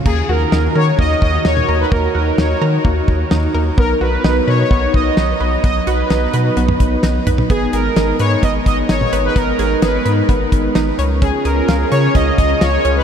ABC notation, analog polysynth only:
X:1
M:4/4
L:1/16
Q:1/4=129
K:Ebm
V:1 name="Analog polysynth"
A2 B4 d2 e2 e2 d3 c | B2 B2 d4 z8 | B2 =B4 d4 ^d6 | ^d2 =B12 z2 |
A2 B4 d2 e2 e2 d3 c | B2 B2 c4 z8 | A2 B4 d2 e2 e2 d3 c |]